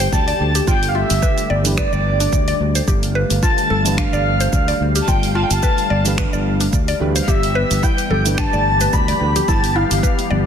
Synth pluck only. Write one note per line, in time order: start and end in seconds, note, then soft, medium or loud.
0.00 0.12 C5 loud
0.28 0.54 D5 medium
0.55 0.66 G4 medium
0.67 0.94 F4 medium
0.95 1.21 F4 medium
1.22 1.37 B4 medium
1.50 1.64 D5 medium
1.78 1.91 B4 medium
1.93 2.00 D5 medium
2.20 2.32 D4 medium
2.48 2.74 D5 loud
2.75 2.82 C5 medium
2.88 3.02 G4 medium
3.15 3.42 B4 loud
3.43 3.57 F4 medium
3.70 3.97 A4 medium
3.98 4.12 D4 medium
4.13 4.39 D5 loud
4.41 4.52 C5 loud
4.68 4.94 D5 medium
4.95 5.07 G4 medium
5.08 5.34 F4 medium
5.35 5.62 F4 medium
5.63 5.77 B4 medium
5.90 6.05 D5 medium
6.18 6.32 B4 medium
6.33 6.40 D5 medium
6.61 6.72 D4 medium
6.88 7.14 D5 loud
7.16 7.23 C5 medium
7.28 7.42 G4 medium
7.55 7.82 B4 loud
7.83 7.98 E4 medium
8.11 8.37 A4 medium
8.38 8.53 D4 medium
8.53 8.65 D5 medium
8.81 8.93 B4 loud
9.08 9.34 D5 medium
9.36 9.47 G4 medium
9.48 9.74 E4 medium
9.76 10.02 E4 medium
10.03 10.18 B4 medium
10.31 10.45 D5 medium